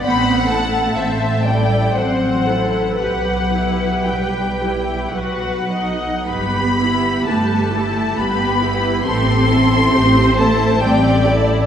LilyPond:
<<
  \new Staff \with { instrumentName = "Violin section" } { \time 3/4 \key e \minor \tempo 4 = 64 b''8 a''4 g''8 fis''4 | fis''4 g''4 fis''4 | b''4 a''4 b''4 | c'''4. a''8 g''8 r8 | }
  \new Staff \with { instrumentName = "Violin section" } { \time 3/4 \key e \minor fis''4 e''8 d''8 c''4 | b'2~ b'8 r8 | r4 a'4 g'8 b'8 | a'4 c''4 d''4 | }
  \new Staff \with { instrumentName = "Viola section" } { \time 3/4 \key e \minor <c' c''>8 <e' a'>8 <c' c''>8 <e' a'>8 <c' c''>8 <e' a'>8 | <g' b'>8 <e' g'>8 <g' b'>8 <e' g'>8 <fis' b'>8 <dis' dis''>8 | <g' b'>8 <e' g'>8 <g' b'>8 <e' g'>8 <g' b'>8 <e' g'>8 | <c' g'>8 <e' a'>8 <c' g'>8 <e' a'>8 <c' g'>8 <e' a'>8 | }
  \new Staff \with { instrumentName = "Cello section" } { \time 3/4 \key e \minor b8 a4 g8 fis4 | fis4 g4 fis4 | b4 a4 b4 | c'4. a8 g8 r8 | }
  \new Staff \with { instrumentName = "Double bass section" } { \clef bass \time 3/4 \key e \minor a,,4 a,,4 a,,4 | b,,4 b,,4 b,,4 | g,,4 g,,4 g,,4 | a,,4 a,,4 a,,4 | }
>>